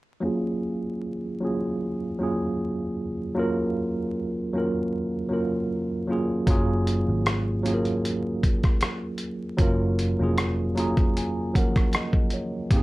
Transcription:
0.20 tine electric piano F#3 A#3 C#4 F4
0.25 tine electric piano G#4
1.40 tine electric piano F#3 A#3 C#4 F4
1.45 tine electric piano G#4
2.18 tine electric piano F#3 A#3 C#4 F4
2.23 tine electric piano G#4
3.34 tine electric piano F#3 A#3 C#4 F4
3.39 tine electric piano A#4
4.53 tine electric piano F#3 A#3 C#4 F4
4.58 tine electric piano A#4
5.29 tine electric piano F#3 A#3 C#4 F4
5.33 tine electric piano A#4
6.07 tine electric piano F#3 A#3 C#4 F4
6.12 tine electric piano G#4
6.46 picked electric bass F#1, tine electric piano F#3 A#3 C#4 F4, kick, closed hi-hat
6.51 tine electric piano G#4
6.87 closed hi-hat
7.08 picked electric bass G#1
7.26 cross-stick, closed hi-hat
7.63 tine electric piano F#3 A#3 C#4 F4, closed hi-hat
7.68 tine electric piano G#4
7.74 tine electric piano A#4
7.85 closed hi-hat
8.05 closed hi-hat
8.43 kick, closed hi-hat
8.63 kick, cross-stick, closed hi-hat
8.81 cross-stick, closed hi-hat
9.18 closed hi-hat
9.57 picked electric bass F#1, tine electric piano F#3 A#3 C#4 F4, kick, closed hi-hat
9.61 tine electric piano A#4
9.99 closed hi-hat
10.19 picked electric bass F1, tine electric piano F#3 A#3 C#4 F4
10.23 tine electric piano G#4
10.38 cross-stick, closed hi-hat
10.75 tine electric piano F#3 A#3 C#4 F4 A#5, closed hi-hat
10.79 tine electric piano G#4
10.97 kick, closed hi-hat
11.17 tine electric piano G#5, closed hi-hat
11.54 tine electric piano F3 F#3 A#3 C#4 F#5, kick, closed hi-hat
11.58 tine electric piano A#4
11.76 kick, cross-stick, closed hi-hat
11.93 tine electric piano D#5, cross-stick, closed hi-hat
12.13 kick
12.30 tine electric piano C#5, closed hi-hat
12.71 picked electric bass G#1, tine electric piano A#3 C4 D#4 G4, kick, closed hi-hat
12.76 tine electric piano G#4

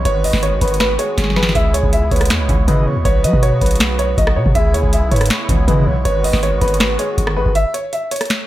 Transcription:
Already playing: accordion G#3 B3
0.05 808-style bass G#1, accordion D#3 F#4, soft synth lead B4, grand piano C#5, kick, closed hi-hat
0.24 grand piano D#5, open hi-hat
0.33 808-style bass G#1, kick, snare
0.43 grand piano C#5, closed hi-hat
0.61 808-style bass G#1, grand piano B4, soft synth lead C#5, kick, closed hi-hat
0.68 closed hi-hat
0.74 closed hi-hat
0.80 soft synth lead B4, grand piano B4, finger snap, snare, closed hi-hat
0.99 soft synth lead G#4, grand piano C#5, closed hi-hat
1.18 808-style bass G#1, kick, snare, closed hi-hat
1.24 snare
1.30 snare
1.36 grand piano B4, snare
1.43 snare
1.49 snare
1.55 808-style bass C#2, accordion C#3 E4, soft synth lead G#4, grand piano E5, kick, closed hi-hat
1.74 grand piano C#5, closed hi-hat
1.83 808-style bass C#2, kick
1.93 grand piano E5, closed hi-hat
2.11 808-style bass C#2, soft synth lead B4, grand piano C#5, kick, closed hi-hat
2.16 closed hi-hat
2.21 cross-stick, closed hi-hat
2.25 closed hi-hat
2.30 808-style bass E2, soft synth lead C#5, finger snap, snare, closed hi-hat
2.39 808-style bass C#2
2.49 808-style bass C#2, analog polysynth B2 C#3 E3, kick, closed hi-hat
2.68 analog polysynth B2 C#3 E3, 808-style bass C#3, grand piano B4, soft synth lead D#5, kick, closed hi-hat
2.86 soft synth lead C#5
2.96 808-style bass D#2
3.05 808-style bass B1, accordion C#3 F#3 F#4, soft synth lead B4, grand piano C#5, kick, closed hi-hat
3.24 808-style bass F#3, grand piano D#5, closed hi-hat
3.33 808-style bass B2, kick
3.43 grand piano C#5, closed hi-hat
3.61 808-style bass B1, grand piano B4, soft synth lead C#5, kick, closed hi-hat
3.66 closed hi-hat
3.71 closed hi-hat
3.76 closed hi-hat
3.80 soft synth lead B4, finger snap, snare, closed hi-hat
3.99 grand piano C#5, closed hi-hat
4.18 808-style bass B1, grand piano D#5, kick, closed hi-hat
4.27 cross-stick
4.36 808-style bass B2, grand piano C#5
4.46 808-style bass B2, kick
4.55 808-style bass C#2, accordion G#3 E4, soft synth lead G#4, grand piano E5, kick, closed hi-hat
4.74 808-style bass D#2, grand piano C#5, closed hi-hat
4.83 808-style bass C#2, kick
4.93 grand piano E5, closed hi-hat
5.02 808-style bass B1
5.11 808-style bass G#2, soft synth lead B4, grand piano C#5, kick, closed hi-hat
5.16 closed hi-hat
5.21 cross-stick, closed hi-hat
5.26 closed hi-hat
5.30 soft synth lead C#5, finger snap, snare, closed hi-hat
5.49 808-style bass C#2, analog polysynth B2 C#3 E3, kick, closed hi-hat
5.68 analog polysynth B2 C#3 E3, 808-style bass C#3, grand piano B4, soft synth lead D#5, kick, closed hi-hat
5.86 808-style bass B1, soft synth lead C#5
6.05 808-style bass G#1, accordion D#3 F#4, soft synth lead B4, grand piano C#5, kick, closed hi-hat
6.24 grand piano D#5, open hi-hat
6.33 808-style bass G#1, kick, snare
6.43 grand piano C#5, closed hi-hat
6.61 808-style bass G#1, grand piano B4, soft synth lead C#5, kick, closed hi-hat
6.68 closed hi-hat
6.74 closed hi-hat
6.80 soft synth lead B4, grand piano B4, finger snap, snare, closed hi-hat
6.99 soft synth lead G#4, grand piano C#5, closed hi-hat
7.18 808-style bass G#1, kick, closed hi-hat
7.27 cross-stick
7.37 grand piano B4
7.46 808-style bass G#1, kick
7.55 grand piano E5, closed hi-hat
7.74 grand piano C#5, closed hi-hat
7.93 grand piano E5, closed hi-hat
8.11 grand piano C#5, closed hi-hat
8.16 closed hi-hat
8.21 cross-stick, closed hi-hat
8.25 closed hi-hat
8.30 finger snap, snare, closed hi-hat

